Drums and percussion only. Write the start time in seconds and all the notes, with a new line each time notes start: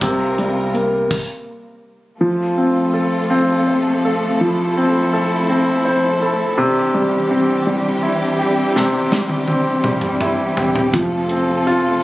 0.01 kick, closed hi-hat
0.38 closed hi-hat
0.75 closed hi-hat
1.11 kick, crash
8.76 snare
9.12 snare
9.29 high tom
9.48 high tom
9.84 mid tom
10.01 mid tom
10.21 mid tom
10.57 floor tom
10.75 floor tom
10.94 kick, closed hi-hat
11.29 closed hi-hat
11.67 closed hi-hat